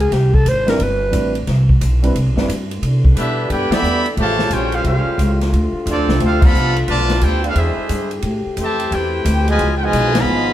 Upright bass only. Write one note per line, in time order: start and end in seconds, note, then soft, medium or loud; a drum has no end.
0.00 0.10 C#2 loud
0.11 0.44 C2 loud
0.46 0.78 G#1 medium
0.79 1.12 G1 medium
1.13 1.45 A1 loud
1.47 1.79 C2 loud
1.81 2.13 B1 loud
2.15 2.26 C2 loud
2.26 2.35 B1 medium
2.35 2.46 G1 medium
2.48 2.81 G2 loud
2.82 3.15 C3 medium
3.16 3.48 B2 medium
3.50 3.69 G2 medium
3.70 muted upright bass stroke soft
3.82 4.15 E2 medium
4.17 4.50 A1 loud
4.50 4.83 A#1 loud
4.84 5.04 C2 medium
5.05 muted upright bass stroke soft
5.18 5.51 C#2 loud
5.52 5.72 D2 loud
5.72 muted upright bass stroke soft
5.86 5.96 E2 loud
5.96 6.07 D2 medium
6.08 6.18 C2 medium
6.20 6.51 D2 medium
6.52 6.86 C2 medium
6.88 7.21 B1 medium
7.21 7.54 D2 loud
7.55 7.76 E2 medium
7.77 muted upright bass stroke soft
7.89 8.22 G2 loud
8.23 8.43 A2 medium
8.46 muted upright bass stroke soft
8.57 8.90 F2 loud
8.91 9.24 E2 medium
9.25 9.58 D2 loud
9.59 9.92 C#2 medium
9.93 10.24 B1 loud
10.25 10.53 G#1 medium